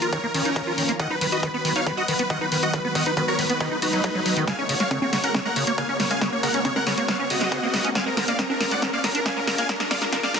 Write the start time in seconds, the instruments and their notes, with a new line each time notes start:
Already playing: riser
0.02 acid bass F4, supersaw synth A#4, closed hi-hat
0.13 acid bass D#3, supersaw synth A#4 C#5, kick, closed hi-hat
0.23 acid bass A#3, supersaw synth A#4
0.34 acid bass D#3, supersaw synth C#4 A#4, open hi-hat
0.45 acid bass D#4, closed hi-hat
0.56 acid bass D#3, kick, closed hi-hat
0.67 acid bass F4
0.78 acid bass D#3, open hi-hat
0.89 acid bass A#3, closed hi-hat
0.99 acid bass D#3, supersaw synth D#5 F#5, kick, closed hi-hat
1.10 acid bass D#4, supersaw synth B4
1.21 acid bass D#3, supersaw synth B4, open hi-hat
1.32 acid bass F#4, supersaw synth B4 D#5, closed hi-hat
1.43 acid bass D#3, supersaw synth B4, kick, closed hi-hat
1.54 acid bass B3, supersaw synth B4
1.65 acid bass D#3, supersaw synth B4, open hi-hat
1.76 acid bass D#4, supersaw synth C#5 F5, closed hi-hat
1.87 acid bass D#3, supersaw synth B4, kick, closed hi-hat
1.97 acid bass F#4, supersaw synth D#5 F#5
2.08 acid bass D#3, supersaw synth B4, open hi-hat
2.19 acid bass B3, supersaw synth B4, closed hi-hat
2.30 acid bass D#3, supersaw synth D#5 F#5, kick, closed hi-hat
2.41 acid bass D#4, supersaw synth B4
2.52 acid bass D#3, supersaw synth B4, open hi-hat
2.63 acid bass F#4, supersaw synth D#5 F#5, closed hi-hat
2.73 acid bass D#3, supersaw synth B4, kick, closed hi-hat
2.85 acid bass B3, supersaw synth B4
2.95 acid bass D#3, supersaw synth D#5 F#5, kick, open hi-hat
3.06 acid bass D#4, supersaw synth B4, closed hi-hat
3.17 acid bass D#3, supersaw synth B4, kick, closed hi-hat
3.28 acid bass F#4, supersaw synth A#4 C#5
3.39 acid bass D#3, supersaw synth B4, open hi-hat
3.50 acid bass B3, supersaw synth B4, closed hi-hat
3.60 acid bass D#3, supersaw synth D#4 B4, kick, closed hi-hat
3.71 acid bass D#4, supersaw synth B4
3.82 supersaw synth D#4 B4, acid bass F#4, open hi-hat
3.93 acid bass F#3, closed hi-hat
4.04 kick, closed hi-hat
4.15 acid bass F#3
4.26 acid bass F#3, open hi-hat
4.37 acid bass D#3, closed hi-hat
4.47 acid bass C#3, supersaw synth F5 G#5, kick, snare, closed hi-hat
4.58 acid bass C#4, supersaw synth C#5
4.69 acid bass C#3, supersaw synth C#5, open hi-hat
4.80 acid bass G#3, supersaw synth C#5 F5, snare, closed hi-hat
4.91 acid bass C#3, supersaw synth C#5, kick, closed hi-hat, high conga
5.02 acid bass A#3, supersaw synth C#5, high conga
5.13 acid bass C#3, supersaw synth C#5, snare, open hi-hat
5.24 acid bass C#4, supersaw synth A#4 F#5, closed hi-hat
5.34 acid bass C#3, supersaw synth C#5, kick, snare, closed hi-hat, high conga
5.45 acid bass G#3, supersaw synth A#4 F#5
5.56 acid bass C#3, supersaw synth C#5, open hi-hat
5.67 acid bass A#3, supersaw synth C#5, closed hi-hat
5.78 acid bass C#3, supersaw synth F5 G#5, kick, closed hi-hat
5.89 acid bass C#4, supersaw synth C#5
6.00 acid bass C#3, supersaw synth C#5, snare, open hi-hat
6.11 acid bass G#3, supersaw synth F5 G#5, closed hi-hat
6.21 acid bass C#3, supersaw synth C#5, kick, snare, closed hi-hat
6.32 acid bass A#3, supersaw synth C#5
6.43 acid bass C#3, supersaw synth A#4 F#5, kick, open hi-hat
6.54 acid bass C#4, supersaw synth C#5, closed hi-hat
6.65 acid bass C#3, supersaw synth C#5, kick, closed hi-hat, high conga
6.76 acid bass G#3, supersaw synth A#4 F#5, high conga
6.87 acid bass C#3, supersaw synth C#5, snare, open hi-hat
6.98 acid bass A#3, supersaw synth C#5, closed hi-hat
7.08 acid bass C#3, supersaw synth C#5 F5, kick, snare, closed hi-hat
7.19 acid bass C#4, supersaw synth C#5
7.30 acid bass C#3, supersaw synth F#4 D#5, open hi-hat
7.41 acid bass G#3, snare, closed hi-hat
7.52 acid bass C#3, kick, closed hi-hat
7.63 acid bass A#3
7.74 acid bass C#3, snare, open hi-hat
7.85 acid bass C#4, closed hi-hat
7.95 acid bass D3, supersaw synth F5 G#5, kick, snare, closed hi-hat
8.06 acid bass G#3, supersaw synth A#4
8.17 acid bass D3, supersaw synth A#4, snare, open hi-hat
8.28 acid bass A#3, supersaw synth D5 F5, closed hi-hat
8.39 acid bass D3, supersaw synth A#4, kick, snare, closed hi-hat, high conga
8.50 acid bass D4, supersaw synth A#4, high conga
8.61 acid bass D3, supersaw synth A#4, snare, open hi-hat
8.71 acid bass G#3, supersaw synth D5 F#5, closed hi-hat
8.82 acid bass D3, supersaw synth A#4, kick, snare, closed hi-hat, high conga
8.93 acid bass A#3, supersaw synth D5 F5
9.04 acid bass D3, supersaw synth A#4, snare, open hi-hat
9.15 acid bass D4, supersaw synth A#4, closed hi-hat
9.26 acid bass D3, supersaw synth F5 G#5, kick, snare, closed hi-hat
9.37 acid bass G#3, supersaw synth A#4
9.47 acid bass D3, supersaw synth A#4, snare, open hi-hat
9.58 acid bass A#3, supersaw synth F5 G#5, closed hi-hat
9.69 acid bass D3, supersaw synth A#4, kick, snare, closed hi-hat
9.80 acid bass D4, supersaw synth A#4, snare
9.91 acid bass D3, supersaw synth D5 F5, kick, snare, open hi-hat, high conga
10.02 acid bass G#3, supersaw synth A#4, snare, closed hi-hat
10.13 acid bass D3, supersaw synth A#4, kick, snare, closed hi-hat, high conga
10.23 acid bass A#3, supersaw synth D5 F5, snare, high conga
10.34 acid bass D3, supersaw synth A#4, snare, open hi-hat